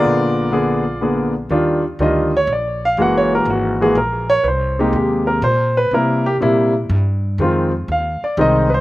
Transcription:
X:1
M:3/4
L:1/8
Q:"Swing" 1/4=122
K:Eb
V:1 name="Grand piano"
[FAd]4- [FAd] z | z2 e _d =d f | (3_g _d B _G A B d | [_c=c] E G B c _c |
B G z4 | z2 f d e [_c=c] |]
V:2 name="Grand piano"
[D,B,_CB]2 [D,B,CA] z [D,B,CA] z | [E,G,DF] z [E,G,DF] z3 | [_F,A,B,_G]3 [F,A,B,G] z2 | z [C,A,B,G]3 z2 |
[C,G,B,=E] z [C,G,B,E] z3 | [E,A,CF] z3 [E,A,CE] z |]
V:3 name="Upright bass" clef=bass
B,,,6 | E,,2 D,,2 B,,,2 | _G,,,2 A,,,2 B,,,2 | C,,2 E,,2 B,,2 |
C,2 B,,2 G,,2 | F,,2 E,, z C,,2 |]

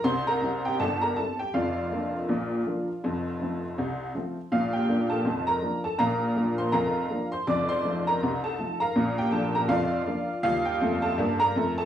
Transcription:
X:1
M:2/4
L:1/16
Q:"Swing 16ths" 1/4=81
K:Bb
V:1 name="Honky-tonk piano"
[cc'] [Bb]2 [Gg] [Aa] [Bb] [Aa] [Gg] | [Fdf]8- | [Fdf]6 z2 | [Ff] [Gg]2 [Aa]2 [Bb]2 [Aa] |
[Bfb]3 [cc'] [Bfb]3 [cc'] | [dd'] [cc']2 [Bb]2 [Aa]2 [Bfb]- | [Bfb] [Gg] [Aa] [Bb] [Fdf]4 | [Ff] [Gg]2 [Aa]2 [Bb]2 [Aa] |]
V:2 name="Honky-tonk piano" clef=bass
[C,,C,]2 [G,C=E]2 [G,,,G,,]2 [G,CE]2 | [F,,,F,,]2 [F,B,D]2 [B,,,B,,]2 [F,B,D]2 | [F,,,F,,]2 [F,A,C]2 [C,,C,]2 [F,A,C]2 | [B,,,B,,]2 [F,B,D]2 [F,,,F,,]2 [F,B,D]2 |
[B,,,B,,]2 [F,B,D]2 [F,,,F,,]2 [F,B,D]2 | [F,,,F,,]2 [F,A,E]2 [C,,C,]2 [F,A,E]2 | [B,,,B,,]2 [F,B,D]2 [F,,,F,,]2 [F,B,D]2 | [E,,G,]2 [F,,A,]2 [G,,B,]2 [F,,A,]2 |]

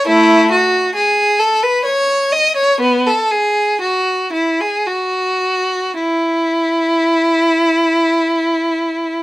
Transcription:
X:1
M:3/4
L:1/16
Q:1/4=57
K:E
V:1 name="Violin"
[A,E]2 F2 G2 A B c2 d c | B, A G2 F2 E G F4 | E12 |]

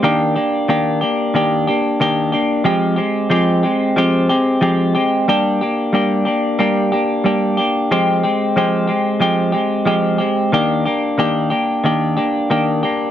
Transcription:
X:1
M:4/4
L:1/8
Q:"Swing 16ths" 1/4=92
K:Fdor
V:1 name="Clean electric guitar"
[E,B,DG] [B,DG] [E,B,DG] [B,DG] [E,B,DG] [B,DG] [E,B,DG] [B,DG] | [F,A,CG] [A,CG] [F,A,CG] [A,CG] [F,A,CG] [A,CG] [F,A,CG] [A,CG] | [G,B,DG] [B,DG] [G,B,DG] [B,DG] [G,B,DG] [B,DG] [G,B,DG] [B,DG] | [F,A,CG] [A,CG] [F,A,CG] [A,CG] [F,A,CG] [A,CG] [F,A,CG] [A,CG] |
[E,B,DG] [B,DG] [E,B,DG] [B,DG] [E,B,DG] [B,DG] [E,B,DG] [B,DG] |]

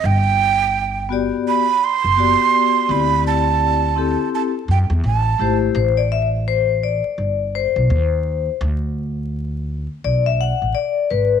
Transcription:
X:1
M:4/4
L:1/16
Q:"Swing 16ths" 1/4=84
K:Ador
V:1 name="Flute"
g6 z2 b2 c'6 | b2 a6 a2 g2 a3 z | z16 | z16 |]
V:2 name="Vibraphone"
z6 [B,FGd]2 z4 [B,FGd]4 | [CEGd]6 [CEGA]2 z6 [A,EGc]2 | c d e2 c2 d4 c6 | z8 d e f2 d2 B2 |]
V:3 name="Upright bass" clef=bass
G,,,6- G,,, z4 F,,,2 z3 | D,,6- D,, z3 F,, E,, A,,,2 ^G,,,2 | A,,,6- A,,, z G,,,3 B,,, _E,,4 | D,,6- D,, z B,,,3 A,,, z2 ^G,,,2 |]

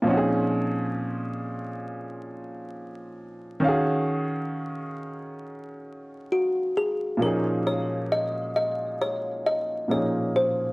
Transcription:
X:1
M:4/4
L:1/8
Q:"Swing 16ths" 1/4=67
K:Bbm
V:1 name="Kalimba"
z8 | z6 G A | B d e e d e d c |]
V:2 name="Upright piano"
[B,,F,CDEGA]8 | [E,DGAf]8 | [B,,F,B,DEA]6 [B,,F,B,DEA]2 |]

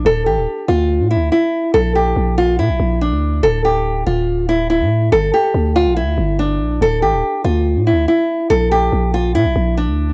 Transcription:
X:1
M:4/4
L:1/16
Q:1/4=142
K:Dm
V:1 name="Nylon-string guitar"
A2 G4 F4 E2 E4 | A2 G4 F2 E4 D4 | A2 G4 F4 E2 E4 | A2 G4 F2 E4 D4 |
A2 G4 F4 E2 E4 | A2 G4 F2 E4 D4 |]
V:2 name="808-style bass" clef=bass
D,,,2 A,,, D,,, z2 D,,3 A,,3/2 D,,3/2 z4 | B,,,4 B,,,4 B,, B,,, B,,,3 D,,3 | D,,,6 D,,,6- D,,, A,,3 | G,,,2 z2 D,,3 B,,,3/2 D,,3/2 G,,,4 B,,,2 |
D,,,2 A,,, D,,, z2 D,,3 A,,3/2 D,,3/2 z4 | B,,,4 B,,,4 B,, B,,, B,,,3 D,,3 |]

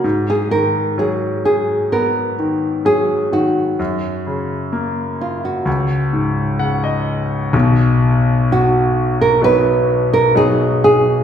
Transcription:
X:1
M:4/4
L:1/16
Q:1/4=64
K:Blyd
V:1 name="Nylon-string guitar"
F G A2 G2 G2 A4 G2 F2- | F6 E F6- F z2 | z4 F3 A B3 A G2 G2 |]
V:2 name="Grand piano"
z16 | z12 f d3 | z16 |]
V:3 name="Grand piano" clef=bass
G,,2 D,2 F,4 B,2 D,2 F,2 D,2 | F,,2 C,2 A,4 C,,2 G,,2 C,4 | [B,,,B,,]8 [F,B,D]4 [F,B,D]4 |]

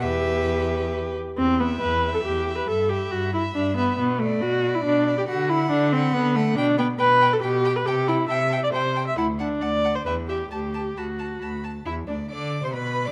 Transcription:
X:1
M:3/4
L:1/16
Q:1/4=138
K:Em
V:1 name="Violin"
e8 z4 | z2 g4 g4 g2 | b2 b4 b4 b2 | z2 b4 b4 b2 |
b2 b4 b4 b2 | [K:Clyd] b2 b2 b2 b2 b2 b2 | a2 a2 a2 a2 a2 a2 | a2 a2 a2 a2 g2 g2 |
a2 a2 b2 a2 b2 a2 | e2 d2 d'3 c' b3 d' |]
V:2 name="Violin"
B8- B2 z2 | z2 e4 e4 e2 | e2 e4 e4 e2 | z2 d4 d4 d2 |
f2 f4 f4 f2 | [K:Clyd] g2 g2 g2 g2 g2 g2 | g2 g2 g2 g2 g2 g2 | f2 f2 f2 f2 e2 e2 |
a2 a2 a2 a2 a2 a2 | E2 D2 d3 c B3 d |]
V:3 name="Viola"
G8- G2 z2 | C2 B,2 B3 A G3 B | A2 G2 F2 E2 D2 B,2 | B,2 A,2 F3 E D3 G |
F2 E2 D2 C2 B,2 A,2 | [K:Clyd] D2 B,2 B3 A G3 B | G2 E2 e3 d c3 e | E2 D2 d3 c B2 G2 |
G4 F6 z2 | E2 D2 d3 c B3 d |]
V:4 name="Cello" clef=bass
E,,8- E,,2 z2 | E,,4 E,,4 E,,4 | G,,4 G,,4 G,,4 | B,,4 B,,4 B,,4 |
D,4 D,4 D,4 | [K:Clyd] B,,4 B,,4 B,,4 | C,4 C,4 C,4 | D,,4 D,,4 E,,4 |
D,,4 D,,4 D,,4 | E,,2 D,,2 D,3 C, B,,3 D, |]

